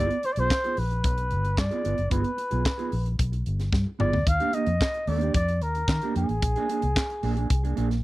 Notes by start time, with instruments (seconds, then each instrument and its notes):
Already playing: clean electric guitar B3 F4, flugelhorn D5
0.10 muted clean electric guitar stroke, closed hi-hat
0.23 flugelhorn C5, muted clean electric guitar stroke, closed hi-hat
0.33 flugelhorn D5, closed hi-hat
0.37 fingered electric bass B1, clean electric guitar B3 F4 G#4, flugelhorn C5
0.50 muted clean electric guitar stroke, kick, snare, clap
0.64 clean electric guitar B3 F4 G#4, closed hi-hat
0.77 fingered electric bass A#1, flugelhorn B4, muted clean electric guitar stroke, open hi-hat
0.91 muted clean electric guitar stroke, closed hi-hat
1.04 fingered electric bass B1, muted clean electric guitar stroke, kick, closed hi-hat
1.18 muted clean electric guitar stroke, closed hi-hat
1.31 fingered electric bass G1, closed hi-hat
1.45 muted clean electric guitar stroke, closed hi-hat
1.57 fingered electric bass G2, flugelhorn D5, muted clean electric guitar stroke, kick, snare, clap
1.71 clean electric guitar B3 F4 G#4, closed hi-hat
1.84 fingered electric bass G1, clean electric guitar B3 F4 B4, closed hi-hat
1.97 fingered electric bass F#1, muted clean electric guitar stroke, closed hi-hat
2.10 fingered electric bass G1, clean electric guitar B3 F4 G#4, flugelhorn B4, kick, closed hi-hat
2.24 muted clean electric guitar stroke, closed hi-hat
2.37 muted clean electric guitar stroke, closed hi-hat
2.50 fingered electric bass B1, clean electric guitar B3 F4 G#4, closed hi-hat
2.65 kick, snare, clap
2.78 clean electric guitar B3 F4 G#4, closed hi-hat
2.92 fingered electric bass A#1, muted clean electric guitar stroke, open hi-hat
3.06 muted clean electric guitar stroke, closed hi-hat
3.19 fingered electric bass B1, muted clean electric guitar stroke, kick, closed hi-hat
3.32 muted clean electric guitar stroke, closed hi-hat
3.46 fingered electric bass G1, closed hi-hat
3.59 muted clean electric guitar stroke, snare, closed hi-hat
3.73 fingered electric bass G2, kick, snare
3.87 muted clean electric guitar stroke
3.99 fingered electric bass G1, clean electric guitar B3 F4 G#4, flugelhorn D5, mid tom
4.13 fingered electric bass D2, muted clean electric guitar stroke, floor tom
4.26 fingered electric bass D#2, flugelhorn F5, muted clean electric guitar stroke, kick, closed hi-hat
4.40 clean electric guitar A#3 D4 G4, closed hi-hat
4.53 clean electric guitar A#3 D4 G4, flugelhorn D#5, closed hi-hat
4.66 fingered electric bass F2, muted clean electric guitar stroke, closed hi-hat
4.81 kick, snare, clap
4.94 muted clean electric guitar stroke, closed hi-hat
5.07 fingered electric bass D#2, clean electric guitar A#3 D4 A#4, flugelhorn D5, open hi-hat
5.21 clean electric guitar A#3 D4 G4, closed hi-hat
5.34 fingered electric bass F2, flugelhorn D5, muted clean electric guitar stroke, kick, closed hi-hat
5.48 muted clean electric guitar stroke, closed hi-hat
5.61 fingered electric bass D#2, flugelhorn A#4, closed hi-hat
5.75 muted clean electric guitar stroke, closed hi-hat
5.88 fingered electric bass D#3, muted clean electric guitar stroke, kick, snare, clap
6.02 clean electric guitar A#3 D4 G4, closed hi-hat
6.16 fingered electric bass F2, clean electric guitar A#3 D4 A#4, flugelhorn G#4, closed hi-hat
6.29 fingered electric bass A1, muted clean electric guitar stroke, closed hi-hat
6.42 fingered electric bass A#1, muted clean electric guitar stroke, kick, closed hi-hat
6.56 clean electric guitar A#3 D4 G#4, closed hi-hat
6.69 clean electric guitar A#3 D4 G#4, closed hi-hat
6.82 fingered electric bass C2, muted clean electric guitar stroke, closed hi-hat
6.96 muted clean electric guitar stroke, kick, snare, clap
7.09 muted clean electric guitar stroke, closed hi-hat
7.23 fingered electric bass A#1, clean electric guitar A#3 D4 G#4, open hi-hat
7.37 clean electric guitar A#3 D4 G#4, closed hi-hat
7.50 fingered electric bass C2, muted clean electric guitar stroke, kick, closed hi-hat
7.63 clean electric guitar A#3 D4 G#4, closed hi-hat
7.76 fingered electric bass A#1, clean electric guitar A#3 D4 G#4, closed hi-hat
7.90 muted clean electric guitar stroke, snare, closed hi-hat